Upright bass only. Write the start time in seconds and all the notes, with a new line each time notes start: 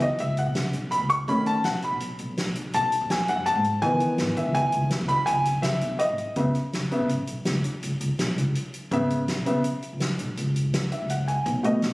0.19 C#2
0.46 C#3
0.74 B1
1.00 C#2
1.28 B1
1.65 B1
1.92 B1
2.19 B1
2.47 B1
2.74 B1
3.01 D#2
3.28 F#2
3.56 G#2
3.83 C#2
4.18 G#1
4.45 C#2
4.74 C#2
5.01 C#2
5.28 C#2
5.54 C#3
5.82 B1
6.09 G#1
6.36 C#2
6.74 C#3
7.00 C#3
7.10 G#1
7.28 B1
7.46 C#2
7.64 E2
7.83 C#2
8.00 C#2
8.19 B1
8.37 C#2
8.91 G#1
9.37 B1
9.93 C#2
10.20 B1
10.38 C#2
11.02 C#2
11.46 B1
11.83 B2